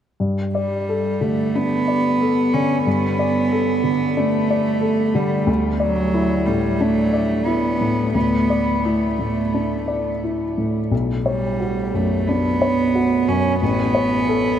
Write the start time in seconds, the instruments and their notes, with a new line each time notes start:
0.20 grand piano G2
0.55 cello G3, grand piano D5
0.89 grand piano A4
1.21 grand piano D3, cello A3
1.55 cello B3, grand piano D4
1.88 grand piano D5
2.21 grand piano A4
2.54 grand piano D3, cello C#4
2.86 grand piano G2, cello B3
3.19 grand piano D5
3.52 grand piano A4
3.84 grand piano D3
4.17 cello A3, grand piano D4
4.50 grand piano D5
4.81 grand piano A4
5.15 grand piano D3, cello G3
5.47 grand piano D2
5.80 cello F#3, grand piano D5
6.14 grand piano E4
6.46 grand piano A2, cello G3
6.80 cello A3, grand piano D4
7.14 grand piano D5
7.45 cello B3, grand piano E4
7.81 grand piano A2
8.14 grand piano D2, cello B3
8.50 grand piano D5
8.85 cello A3, grand piano E4
9.19 grand piano A2
9.54 grand piano D4
9.88 grand piano D5
10.24 grand piano E4
10.58 grand piano A2
10.91 grand piano B1
11.26 cello G3, grand piano C#5
11.60 grand piano F#4
11.94 grand piano F#2, cello A3
12.27 cello B3, grand piano D4
12.62 grand piano C#5
12.95 grand piano F#4
13.28 grand piano F#2, cello C#4
13.61 grand piano A1, cello B3
13.95 grand piano C#5
14.28 grand piano A4